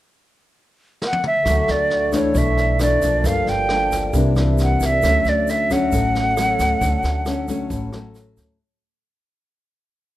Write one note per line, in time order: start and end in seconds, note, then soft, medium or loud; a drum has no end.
1.02 snare medium
1.06 1.25 F#5 medium
1.13 high tom soft
1.23 1.73 E5 medium
1.23 mid tom medium
1.43 1.67 D2 loud
1.43 2.33 D3 medium
1.43 2.09 F#3 soft
1.43 2.32 A4 medium
1.43 2.34 E5 soft
1.43 2.33 C#6 medium
1.43 kick soft
1.43 cross-stick medium
1.43 snare soft
1.43 shaker medium
1.47 2.10 A3 soft
1.47 2.35 F#5 medium
1.68 2.31 D2 medium
1.68 2.14 D5 medium
1.68 snare soft
1.68 shaker soft
1.90 snare soft
2.12 2.76 E3 medium
2.12 2.76 A3 medium
2.12 2.76 D4 medium
2.12 2.39 C#5 medium
2.12 kick soft
2.12 cross-stick soft
2.12 snare soft
2.12 shaker medium
2.33 2.98 B1 medium
2.33 3.22 B2 medium
2.33 3.21 A4 soft
2.33 3.23 D5 soft
2.33 3.22 C#6 soft
2.33 kick medium
2.33 snare soft
2.33 shaker medium
2.38 2.81 E5 medium
2.38 3.24 E5 medium
2.57 snare soft
2.57 shaker soft
2.79 2.99 E3 medium
2.79 2.99 A3 medium
2.79 2.99 D4 medium
2.79 3.28 D5 medium
2.79 cross-stick medium
2.79 snare soft
2.79 shaker medium
3.02 3.23 B1 medium
3.02 3.65 F3 medium
3.02 3.66 A#3 medium
3.02 3.66 D4 medium
3.02 kick soft
3.02 snare soft
3.02 shaker medium
3.22 3.45 G1 medium
3.22 4.11 G2 soft
3.22 4.10 A4 medium
3.22 4.11 A#4 medium
3.22 4.12 D5 soft
3.22 kick medium
3.22 snare soft
3.22 shaker medium
3.26 3.51 F5 loud
3.26 4.13 F5 medium
3.47 4.09 G1 medium
3.47 4.15 G5 loud
3.47 snare soft
3.47 shaker soft
3.69 4.10 F3 medium
3.69 4.11 A#3 soft
3.69 4.11 D4 soft
3.69 cross-stick medium
3.69 snare soft
3.91 kick soft
3.91 snare soft
3.91 shaker medium
4.11 4.76 C2 loud
4.11 4.33 E3 soft
4.11 4.99 G4 medium
4.11 5.00 A#4 medium
4.11 5.01 D5 medium
4.11 kick medium
4.11 snare soft
4.11 shaker medium
4.15 5.01 C3 soft
4.15 4.33 A#3 soft
4.15 4.33 D4 medium
4.15 5.02 E5 medium
4.36 4.99 E3 medium
4.36 5.00 A#3 medium
4.36 5.00 D4 medium
4.36 cross-stick medium
4.36 snare soft
4.36 shaker soft
4.58 snare soft
4.58 shaker medium
4.63 4.87 F#5 medium
4.80 5.01 C2 medium
4.80 kick soft
4.80 snare soft
4.80 shaker medium
4.86 5.30 E5 loud
5.00 5.24 D2 medium
5.00 5.90 D3 medium
5.00 5.67 F#3 medium
5.00 5.67 A3 medium
5.00 8.55 F#4 medium
5.00 8.56 A4 soft
5.00 kick soft
5.00 cross-stick medium
5.00 snare soft
5.00 shaker medium
5.05 5.67 C#4 medium
5.25 5.88 D2 medium
5.25 snare soft
5.25 shaker soft
5.29 5.51 D5 medium
5.47 5.74 E5 medium
5.47 snare soft
5.47 shaker medium
5.70 6.34 F#3 medium
5.70 6.34 A3 medium
5.70 6.34 C#4 medium
5.70 8.17 F#5 loud
5.70 kick soft
5.70 cross-stick soft
5.70 snare soft
5.70 shaker medium
5.92 6.55 A1 loud
5.92 6.80 A2 medium
5.92 kick soft
5.92 snare soft
5.92 shaker medium
6.15 snare soft
6.15 shaker soft
6.37 7.23 F#3 medium
6.37 7.24 A3 medium
6.37 7.24 C#4 medium
6.37 cross-stick medium
6.37 snare soft
6.37 shaker medium
6.59 6.80 D2 medium
6.59 kick soft
6.59 snare soft
6.59 shaker medium
6.81 7.02 D2 medium
6.81 7.69 D3 medium
6.81 kick medium
6.81 snare soft
6.81 shaker medium
7.03 7.67 D2 medium
7.03 snare soft
7.03 shaker soft
7.26 7.45 F#3 soft
7.26 7.45 A3 medium
7.26 7.46 C#4 medium
7.26 cross-stick medium
7.26 snare soft
7.26 shaker soft
7.48 7.90 F#3 medium
7.48 7.90 A3 medium
7.48 7.90 C#4 medium
7.48 kick soft
7.48 snare soft
7.48 shaker medium
7.70 8.34 A1 loud
7.70 8.58 A2 medium
7.70 kick medium
7.70 snare soft
7.70 shaker medium
7.92 8.57 F#3 medium
7.92 8.57 A3 medium
7.92 8.57 C#4 medium
7.92 cross-stick medium
7.92 snare soft
7.92 shaker soft
8.14 snare soft
8.14 shaker medium
8.37 8.58 D2 medium
8.37 kick soft
8.37 snare soft
8.37 shaker medium